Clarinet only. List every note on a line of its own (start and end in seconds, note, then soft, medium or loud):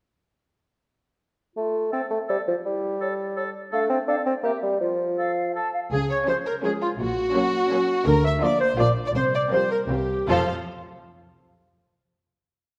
1.56 1.87 F4 soft
2.65 2.95 E4 soft
3.72 4.02 D4 medium
4.08 4.38 C4 medium
4.44 4.75 C4 medium
4.81 5.12 F4 soft
5.92 6.00 G#4 medium
6.11 6.28 C#5 medium
6.29 6.37 C5 medium
6.47 6.55 A#4 medium
6.65 6.73 G#4 medium
6.82 6.90 F4 medium
7.01 8.08 F#4 medium
8.07 8.24 A#4 medium
8.24 8.44 E5 medium
8.43 8.60 D5 medium
8.61 8.69 C5 medium
8.80 8.92 D5 medium
9.08 9.11 D5 medium
9.17 9.34 C5 medium
9.35 9.53 D5 medium
9.54 9.71 C5 medium
9.72 9.80 A#4 medium
9.91 10.28 G4 medium
10.29 10.44 F4 medium